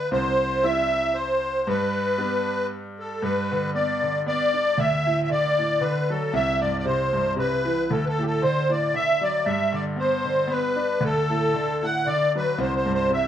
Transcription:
0.11 1.63 C2 medium
0.11 0.65 C5 medium
0.63 1.13 G3 soft
0.63 1.13 C4 soft
0.63 1.14 E4 medium
0.63 1.16 E5 loud
1.14 1.68 C5 medium
1.67 3.18 G2 medium
1.67 2.67 B4 medium
2.18 2.69 G3 medium
2.18 2.69 B3 soft
2.18 2.69 D4 medium
2.99 3.23 A4 medium
3.22 4.74 G2 medium
3.22 3.71 B4 medium
3.51 3.74 D3 medium
3.74 4.01 B3 medium
3.74 4.22 D5 medium
4.02 4.25 D3 soft
4.26 4.53 B3 medium
4.26 4.80 D5 loud
4.53 4.77 D4 medium
4.78 6.30 D2 medium
4.78 5.22 E5 medium
5.06 5.29 A2 medium
5.23 5.30 E5 medium
5.29 5.57 D3 medium
5.29 5.84 D5 medium
5.58 5.81 A2 soft
5.81 6.08 D3 medium
5.81 6.10 B4 medium
6.10 6.33 F#3 medium
6.10 6.34 A4 medium
6.33 7.85 C2 medium
6.33 6.60 E5 loud
6.61 6.85 G2 medium
6.61 6.77 D5 medium
6.79 6.85 D5 medium
6.85 7.13 C3 soft
6.85 7.34 C5 medium
7.13 7.37 G2 soft
7.36 7.64 C3 medium
7.36 7.92 B4 medium
7.65 7.88 E3 medium
7.91 9.42 D2 medium
7.91 8.05 A4 medium
8.05 8.23 A4 medium
8.05 8.08 B4 medium
8.19 8.41 A2 medium
8.23 8.25 G4 medium
8.23 8.43 A4 medium
8.42 8.69 D3 medium
8.42 8.71 C5 medium
8.69 8.93 A2 soft
8.69 8.95 D5 medium
8.94 9.21 D3 medium
8.94 9.23 E5 loud
9.21 9.45 F#3 medium
9.21 9.47 D5 medium
9.46 10.98 G2 medium
9.46 9.75 E5 medium
9.72 9.96 D3 medium
9.72 9.84 D5 medium
9.96 10.24 B3 medium
9.96 10.52 C5 medium
10.24 10.48 D3 soft
10.47 10.76 B3 medium
10.47 11.04 B4 medium
10.76 11.00 D4 medium
11.01 12.53 D2 medium
11.01 11.86 A4 medium
11.30 11.53 A2 medium
11.54 11.81 D3 medium
11.82 12.05 A2 soft
11.82 12.08 F#5 loud
12.06 12.33 D3 medium
12.06 12.32 D5 loud
12.35 12.58 F#3 medium
12.35 12.60 B4 medium
12.58 13.28 C2 medium
12.58 12.74 C5 medium
12.76 12.93 C5 medium
12.86 13.09 G2 medium
12.94 13.11 C5 medium
13.10 13.28 C3 soft
13.10 13.26 E5 medium

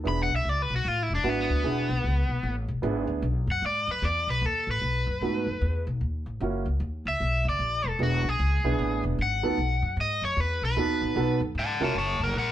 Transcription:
0.04 0.28 E1 medium
0.04 0.27 B3 medium
0.04 0.27 D4 soft
0.04 0.28 E4 soft
0.04 0.28 G#4 medium
0.08 0.20 B5 loud
0.23 0.34 F#5 medium
0.30 0.44 B1 medium
0.36 0.49 E5 medium
0.45 0.68 C#2 medium
0.49 0.62 D5 medium
0.62 0.73 B4 medium
0.70 0.83 B1 medium
0.76 0.88 F#4 medium
0.85 1.07 A1 medium
0.85 1.03 F4 medium
1.03 1.13 E4 medium
1.10 1.23 E1 medium
1.15 1.29 D4 medium
1.24 1.47 G#1 medium
1.24 1.62 B3 medium
1.24 1.62 D4 medium
1.24 1.62 E4 medium
1.24 1.84 F#4 medium
1.29 1.39 B3 medium
1.41 2.55 B3 medium
1.49 1.63 D2 medium
1.64 1.87 E1 medium
1.64 1.87 B3 medium
1.64 1.87 D4 medium
1.64 1.87 E4 medium
1.64 1.87 G#4 medium
1.89 2.02 B1 medium
2.04 2.27 C#2 medium
2.29 2.42 B1 medium
2.43 2.66 A1 medium
2.68 2.82 E1 medium
2.82 3.06 G#1 medium
2.82 3.23 B3 medium
2.82 3.23 D4 medium
2.82 3.23 E4 medium
2.82 3.23 G#4 medium
3.07 3.21 D2 medium
3.22 3.45 B1 medium
3.47 3.61 F#2 medium
3.52 3.64 F#5 medium
3.62 3.85 G#2 medium
3.66 3.89 D5 medium
3.88 4.01 F#2 medium
3.88 4.04 B4 medium
4.02 4.25 E2 medium
4.02 4.28 D5 medium
4.27 4.41 B1 medium
4.27 4.46 B4 medium
4.42 4.65 D#2 medium
4.46 4.69 A4 medium
4.67 4.80 A1 medium
4.67 5.85 B4 medium
4.82 5.05 B1 medium
5.07 5.20 F#2 medium
5.21 5.44 G#2 medium
5.21 5.45 A3 medium
5.21 5.45 B3 soft
5.21 5.45 D#4 soft
5.21 5.45 F#4 medium
5.47 5.60 F#2 medium
5.61 5.84 E2 medium
5.87 6.00 B1 medium
6.01 6.24 D#2 medium
6.26 6.39 A1 medium
6.40 6.63 F#1 medium
6.40 6.64 A#3 medium
6.40 6.64 C#4 medium
6.40 6.64 E4 medium
6.40 6.64 F#4 medium
6.66 6.79 C#2 medium
6.80 7.03 D#2 medium
7.05 7.19 C#2 medium
7.05 7.45 E5 medium
7.20 7.43 B1 medium
7.45 7.58 F#1 medium
7.49 7.88 D5 medium
7.59 7.82 A#1 medium
7.84 7.97 E1 medium
7.88 8.01 A4 medium
7.99 8.22 E1 medium
7.99 8.22 B3 medium
7.99 8.22 D4 soft
7.99 8.22 E4 soft
7.99 8.22 G#4 medium
8.03 8.29 F#4 medium
8.24 8.37 B1 medium
8.29 9.03 G#4 medium
8.39 8.62 C#2 medium
8.64 8.77 B1 medium
8.64 9.15 B3 medium
8.64 9.15 D4 medium
8.64 9.15 E4 medium
8.64 9.16 G#4 medium
8.79 9.01 A1 medium
9.04 9.17 E1 medium
9.19 9.41 G#1 medium
9.19 9.97 F#5 medium
9.43 9.56 D2 medium
9.43 9.56 B3 medium
9.43 9.56 D#4 medium
9.43 9.56 F#4 medium
9.43 9.56 A4 medium
9.58 9.80 B1 medium
9.82 9.95 F#2 medium
9.97 10.19 G#2 medium
10.01 10.23 D#5 medium
10.22 10.35 F#2 medium
10.22 10.40 C#5 medium
10.37 10.59 E2 medium
10.37 10.63 B4 medium
10.62 10.75 B1 medium
10.62 11.40 B4 medium
10.76 10.99 D#2 medium
10.76 11.14 B3 medium
10.76 11.15 D#4 medium
10.76 11.15 F#4 medium
10.76 11.15 A4 medium
11.02 11.14 A1 medium
11.16 11.38 B1 medium
11.16 11.38 B3 medium
11.16 11.38 D#4 medium
11.16 11.39 F#4 medium
11.16 11.39 A4 medium
11.40 11.53 F#2 medium
11.55 11.77 G#2 medium
11.59 11.82 F#5 medium
11.59 11.82 A5 medium
11.80 11.93 F1 medium
11.80 11.93 C#4 medium
11.80 11.93 E4 medium
11.80 11.93 F#4 medium
11.80 11.93 A#4 medium
11.80 11.95 F#5 medium
11.80 11.96 A5 medium
11.95 12.17 F#1 medium
11.95 12.20 C#5 medium
11.99 12.24 A5 medium
12.20 12.33 F#1 medium
12.20 12.36 A#4 medium
12.24 12.36 F#5 medium
12.34 12.52 A#1 medium
12.38 12.52 A#4 medium
12.38 12.52 F#5 medium

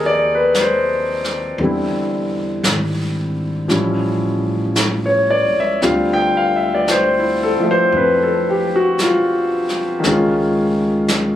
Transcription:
0.00 1.55 D#2 medium
0.00 1.59 F3 medium
0.00 1.59 A#3 soft
0.00 1.60 C4 soft
0.00 1.60 D#4 soft
0.00 1.61 G4 soft
0.00 1.61 G#4 medium
0.00 1.61 A4 medium
0.00 1.61 A#4 medium
0.00 0.61 C5 medium
0.00 0.06 D5 medium
0.00 1.61 D#5 loud
0.06 0.29 D5 medium
0.35 0.52 B4 medium
0.54 brush sweep soft
0.54 snare soft
0.54 hi-hat pedal soft
0.61 1.02 C5 medium
1.24 snare soft
1.58 2.60 E2 medium
1.58 3.70 D3 soft
1.58 3.69 G3 soft
1.58 brush sweep soft
1.63 3.72 C4 soft
1.63 3.72 E4 soft
2.63 3.65 G#1 medium
2.63 brush sweep soft
2.63 snare medium
2.63 hi-hat pedal medium
3.68 5.45 A1 medium
3.68 5.81 F3 soft
3.68 5.81 G3 soft
3.68 5.83 C#4 soft
3.68 brush sweep soft
3.68 snare soft
3.74 5.84 E4 soft
4.76 brush sweep soft
4.76 snare soft
4.76 hi-hat pedal medium
5.06 5.44 C#5 medium
5.30 5.56 D5 medium
5.49 5.80 C#2 medium
5.60 5.79 E5 medium
5.82 7.57 D2 medium
5.82 10.04 D3 medium
5.82 10.04 G3 medium
5.82 10.04 C4 medium
5.82 9.01 F4 medium
5.82 6.19 F5 medium
5.82 brush sweep soft
5.82 snare soft
6.13 6.51 G5 medium
6.37 6.44 F5 medium
6.56 6.78 E5 medium
6.75 6.86 D5 medium
6.88 7.25 C5 medium
6.88 brush sweep soft
6.88 snare soft
6.88 hi-hat pedal medium
7.19 7.57 E4 soft
7.43 7.68 A4 medium
7.60 10.04 F3 soft
7.60 10.04 A3 soft
7.60 10.05 E5 soft
7.60 muted upright bass stroke soft
7.71 7.90 C5 medium
7.92 10.00 F2 medium
7.92 brush sweep soft
7.97 8.30 B4 medium
8.23 8.61 A4 medium
8.50 8.74 G4 medium
8.76 8.95 F#4 medium
8.99 brush sweep soft
8.99 snare soft
8.99 hi-hat pedal medium
9.03 10.02 F4 medium
9.69 snare soft
10.00 11.36 D#3 medium
10.00 11.36 G#3 medium
10.00 brush sweep soft
10.00 snare soft
10.04 11.36 C#2 medium
10.04 11.36 C#4 medium
10.11 11.36 F4 medium
11.08 brush sweep soft
11.08 snare medium
11.08 hi-hat pedal medium

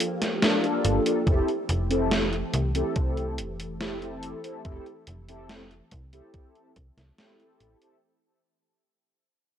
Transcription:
0.00 1.23 F3 medium
0.00 1.24 A#3 medium
0.00 7.99 G4 medium
0.00 closed hi-hat medium
0.22 snare soft
0.22 closed hi-hat medium
0.41 0.58 A#3 medium
0.41 0.58 D4 medium
0.41 0.59 F4 medium
0.41 0.59 A4 medium
0.41 snare loud
0.41 closed hi-hat medium
0.62 1.00 A#3 medium
0.62 1.01 D4 medium
0.62 1.01 F4 medium
0.62 1.01 A4 medium
0.62 closed hi-hat soft
0.85 1.00 G1 medium
0.85 closed hi-hat loud
1.05 1.21 A#3 medium
1.05 1.22 D4 medium
1.05 1.22 F4 medium
1.05 1.22 A4 medium
1.05 closed hi-hat medium
1.26 1.42 F1 medium
1.26 7.99 E3 medium
1.26 7.99 A3 medium
1.26 1.48 C4 loud
1.26 1.48 E4 medium
1.26 1.48 G4 medium
1.26 1.48 A4 loud
1.26 kick loud
1.26 closed hi-hat medium
1.49 closed hi-hat soft
1.69 2.44 F1 medium
1.69 closed hi-hat medium
1.90 2.23 C4 medium
1.90 2.24 E4 medium
1.90 2.24 G4 medium
1.90 2.24 A4 loud
1.90 closed hi-hat medium
2.12 snare loud
2.12 closed hi-hat medium
2.33 closed hi-hat soft
2.54 2.83 C2 medium
2.54 closed hi-hat medium
2.74 3.33 C4 medium
2.74 3.33 E4 medium
2.74 3.33 G4 medium
2.74 3.33 A4 medium
2.74 closed hi-hat medium
2.96 3.40 C2 medium
2.96 kick loud
2.96 closed hi-hat medium
3.17 closed hi-hat soft
3.38 4.34 F1 medium
3.38 closed hi-hat medium
3.60 closed hi-hat medium
3.80 3.96 C4 medium
3.80 3.97 E4 medium
3.80 3.97 G4 medium
3.80 3.97 A4 medium
3.80 snare loud
3.80 closed hi-hat medium
4.01 4.39 C4 medium
4.01 4.39 E4 medium
4.01 4.39 G4 medium
4.01 4.39 A4 medium
4.01 closed hi-hat soft
4.23 closed hi-hat medium
4.43 4.60 C4 medium
4.43 4.60 E4 medium
4.43 4.60 G4 medium
4.43 4.60 A4 medium
4.43 closed hi-hat soft
4.64 4.80 F1 medium
4.64 4.86 C4 medium
4.64 4.86 E4 medium
4.64 4.86 G4 medium
4.64 4.87 A4 loud
4.64 kick loud
4.64 closed hi-hat soft
4.86 closed hi-hat soft
5.07 5.82 F1 medium
5.07 closed hi-hat medium
5.28 5.62 C4 medium
5.28 5.62 E4 medium
5.28 5.62 G4 medium
5.28 5.62 A4 loud
5.28 closed hi-hat medium
5.49 snare loud
5.49 closed hi-hat medium
5.71 closed hi-hat soft
5.91 6.21 C2 loud
5.91 kick medium
5.91 closed hi-hat medium
6.12 6.71 C4 medium
6.12 6.71 E4 medium
6.12 6.71 G4 medium
6.12 6.71 A4 medium
6.12 closed hi-hat medium
6.34 kick loud
6.34 closed hi-hat soft
6.55 closed hi-hat soft
6.76 6.91 C2 medium
6.76 kick medium
6.76 closed hi-hat medium
6.97 7.12 C2 medium
6.97 snare soft
6.97 closed hi-hat soft
7.18 7.34 C4 medium
7.18 7.35 E4 medium
7.18 7.35 G4 medium
7.18 7.35 A4 medium
7.18 snare loud
7.18 closed hi-hat soft
7.39 7.77 C4 medium
7.39 7.77 E4 medium
7.39 7.77 G4 medium
7.39 7.78 A4 medium
7.39 closed hi-hat soft
7.61 7.76 A1 medium
7.61 closed hi-hat medium
7.82 7.98 C4 medium
7.82 7.98 E4 medium
7.82 7.98 G4 medium
7.82 7.98 A4 medium
7.82 closed hi-hat soft

